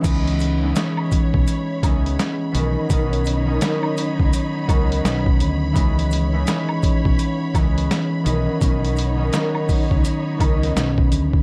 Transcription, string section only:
0, 0, Header, 1, 2, 480
1, 0, Start_track
1, 0, Key_signature, 4, "minor"
1, 0, Tempo, 714286
1, 29, Time_signature, 4, 2, 24, 8
1, 7678, End_track
2, 0, Start_track
2, 0, Title_t, "String section"
2, 0, Program_c, 0, 48
2, 29, Note_on_c, 0, 52, 77
2, 29, Note_on_c, 0, 73, 75
2, 30, Note_on_c, 0, 83, 82
2, 1692, Note_off_c, 0, 52, 0
2, 1692, Note_off_c, 0, 73, 0
2, 1707, Note_on_c, 0, 73, 69
2, 1708, Note_on_c, 0, 63, 75
2, 3847, Note_off_c, 0, 63, 0
2, 3847, Note_off_c, 0, 73, 0
2, 3856, Note_on_c, 0, 52, 76
2, 3856, Note_on_c, 0, 73, 74
2, 5526, Note_off_c, 0, 52, 0
2, 5526, Note_off_c, 0, 73, 0
2, 5551, Note_on_c, 0, 63, 76
2, 5552, Note_on_c, 0, 73, 72
2, 7678, Note_off_c, 0, 63, 0
2, 7678, Note_off_c, 0, 73, 0
2, 7678, Note_off_c, 0, 83, 0
2, 7678, End_track
0, 0, End_of_file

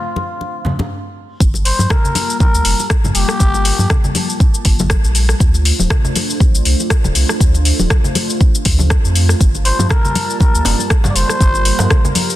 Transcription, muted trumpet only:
0, 0, Header, 1, 2, 480
1, 0, Start_track
1, 0, Key_signature, -2, "minor"
1, 0, Tempo, 500000
1, 1346, Time_signature, 4, 2, 24, 8
1, 11864, End_track
2, 0, Start_track
2, 0, Title_t, "Muted trumpet"
2, 0, Program_c, 0, 59
2, 0, Note_on_c, 0, 65, 99
2, 828, Note_off_c, 0, 65, 0
2, 1588, Note_on_c, 0, 72, 101
2, 1828, Note_on_c, 0, 70, 100
2, 1842, Note_off_c, 0, 72, 0
2, 2302, Note_off_c, 0, 70, 0
2, 2308, Note_on_c, 0, 70, 96
2, 2753, Note_off_c, 0, 70, 0
2, 3025, Note_on_c, 0, 67, 121
2, 3947, Note_off_c, 0, 67, 0
2, 9265, Note_on_c, 0, 72, 108
2, 9489, Note_off_c, 0, 72, 0
2, 9505, Note_on_c, 0, 70, 101
2, 9952, Note_off_c, 0, 70, 0
2, 9985, Note_on_c, 0, 70, 96
2, 10432, Note_off_c, 0, 70, 0
2, 10646, Note_on_c, 0, 74, 86
2, 10707, Note_on_c, 0, 72, 124
2, 10721, Note_off_c, 0, 74, 0
2, 11666, Note_off_c, 0, 72, 0
2, 11864, End_track
0, 0, End_of_file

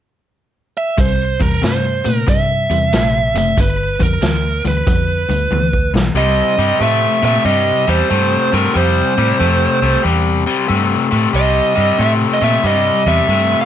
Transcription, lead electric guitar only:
0, 0, Header, 1, 2, 480
1, 0, Start_track
1, 0, Tempo, 647948
1, 729, Time_signature, 4, 2, 24, 8
1, 10113, End_track
2, 0, Start_track
2, 0, Title_t, "Lead electric guitar"
2, 0, Program_c, 0, 29
2, 574, Note_on_c, 0, 76, 81
2, 722, Note_off_c, 0, 76, 0
2, 743, Note_on_c, 0, 72, 76
2, 1049, Note_off_c, 0, 72, 0
2, 1051, Note_on_c, 0, 70, 71
2, 1201, Note_off_c, 0, 70, 0
2, 1224, Note_on_c, 0, 72, 76
2, 1594, Note_off_c, 0, 72, 0
2, 1594, Note_on_c, 0, 70, 76
2, 1695, Note_off_c, 0, 70, 0
2, 1698, Note_on_c, 0, 76, 87
2, 2493, Note_off_c, 0, 76, 0
2, 2502, Note_on_c, 0, 76, 81
2, 2662, Note_off_c, 0, 76, 0
2, 2668, Note_on_c, 0, 71, 80
2, 2981, Note_off_c, 0, 71, 0
2, 2984, Note_on_c, 0, 70, 76
2, 3424, Note_off_c, 0, 70, 0
2, 3465, Note_on_c, 0, 71, 66
2, 4384, Note_off_c, 0, 71, 0
2, 4574, Note_on_c, 0, 75, 96
2, 5055, Note_off_c, 0, 75, 0
2, 5058, Note_on_c, 0, 76, 91
2, 5347, Note_off_c, 0, 76, 0
2, 5373, Note_on_c, 0, 76, 97
2, 5521, Note_off_c, 0, 76, 0
2, 5524, Note_on_c, 0, 75, 92
2, 5848, Note_on_c, 0, 72, 85
2, 5851, Note_off_c, 0, 75, 0
2, 6328, Note_off_c, 0, 72, 0
2, 6331, Note_on_c, 0, 70, 75
2, 6496, Note_off_c, 0, 70, 0
2, 6499, Note_on_c, 0, 72, 83
2, 7423, Note_off_c, 0, 72, 0
2, 8413, Note_on_c, 0, 75, 80
2, 8895, Note_off_c, 0, 75, 0
2, 8898, Note_on_c, 0, 76, 81
2, 8963, Note_off_c, 0, 76, 0
2, 9139, Note_on_c, 0, 75, 61
2, 9204, Note_off_c, 0, 75, 0
2, 9217, Note_on_c, 0, 76, 80
2, 9378, Note_off_c, 0, 76, 0
2, 9385, Note_on_c, 0, 75, 92
2, 9688, Note_off_c, 0, 75, 0
2, 9690, Note_on_c, 0, 76, 86
2, 10068, Note_off_c, 0, 76, 0
2, 10085, Note_on_c, 0, 77, 71
2, 10113, Note_off_c, 0, 77, 0
2, 10113, End_track
0, 0, End_of_file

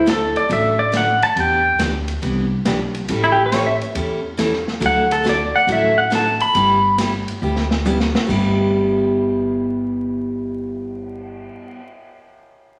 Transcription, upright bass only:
0, 0, Header, 1, 2, 480
1, 0, Start_track
1, 0, Key_signature, 1, "major"
1, 0, Tempo, 432900
1, 1512, Time_signature, 4, 2, 24, 8
1, 14183, End_track
2, 0, Start_track
2, 0, Title_t, "Upright bass"
2, 0, Program_c, 0, 32
2, 0, Note_on_c, 0, 38, 99
2, 360, Note_off_c, 0, 38, 0
2, 548, Note_on_c, 0, 33, 90
2, 1317, Note_off_c, 0, 33, 0
2, 1508, Note_on_c, 0, 40, 87
2, 1893, Note_off_c, 0, 40, 0
2, 1984, Note_on_c, 0, 38, 82
2, 2394, Note_off_c, 0, 38, 0
2, 2470, Note_on_c, 0, 36, 82
2, 2877, Note_off_c, 0, 36, 0
2, 2951, Note_on_c, 0, 35, 81
2, 3357, Note_off_c, 0, 35, 0
2, 3427, Note_on_c, 0, 33, 89
2, 4194, Note_off_c, 0, 33, 0
2, 4378, Note_on_c, 0, 40, 82
2, 5148, Note_off_c, 0, 40, 0
2, 5327, Note_on_c, 0, 38, 96
2, 6102, Note_off_c, 0, 38, 0
2, 6287, Note_on_c, 0, 33, 81
2, 7062, Note_off_c, 0, 33, 0
2, 7261, Note_on_c, 0, 31, 93
2, 8031, Note_off_c, 0, 31, 0
2, 8226, Note_on_c, 0, 38, 93
2, 8994, Note_off_c, 0, 38, 0
2, 9193, Note_on_c, 0, 31, 97
2, 12730, Note_off_c, 0, 31, 0
2, 14183, End_track
0, 0, End_of_file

